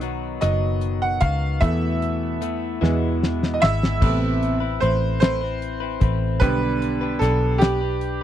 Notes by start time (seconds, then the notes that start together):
Already playing: B1 D#3 F#3 B3 D#5
0.01 F#3 B3 D#4 F#4, closed hi-hat
0.41 F#1 B2 F#3 B3 D#4 F#4 D#5, cross-stick, closed hi-hat
0.81 closed hi-hat
1.02 F#5
1.20 C#2 B3 D#4 F#4 F5, kick, closed hi-hat
1.61 E2 B2 E3 A3 B3 E4 E5, kick, closed hi-hat
2.02 closed hi-hat
2.41 E3 A3 B3 E4, closed hi-hat
2.81 E2 B2 E3 G#3 B3 E4, snare
3.23 snare
3.43 snare
3.54 D#5
3.60 G#1 E3 G#3 B3 E4 E5, snare
3.83 snare
4.01 A1 A2 C3 A3 B3 C4 E4 B4, kick, crash
4.20 C4 E4 B4
4.43 closed hi-hat
4.60 C4 E4 B4
4.80 A1 A3 C4 E4 B4 C5, closed hi-hat
5.20 A2 A3 C4 E4 B4 C5, snare, closed hi-hat
5.41 C4 E4 B4
5.62 closed hi-hat
5.80 C4 E4 B4
6.00 A1 A3 C4 E4 B4, kick, closed hi-hat
6.40 B1 D3 G3 B3 D4 G4 B4, kick, closed hi-hat
6.61 D4 G4 B4
6.82 closed hi-hat
7.01 D4 G4 B4
7.19 B1 B3 D4 G4 A4, snare, closed hi-hat
7.23 B4
7.58 B3 D4 G4, snare, closed hi-hat
7.62 B4
7.81 D4 G4 B4
8.01 closed hi-hat